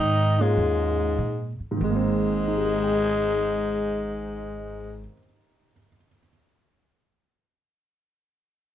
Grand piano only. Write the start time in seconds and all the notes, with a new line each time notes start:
0.40 G#3 A#3 C#4 F4
1.71 G#2
1.77 D#3
1.84 G#3
1.90 A#3
1.96 C4
2.48 D#4
2.55 G4
2.64 A#4
2.73 D#5
2.83 G5
2.93 A#5
3.05 D#6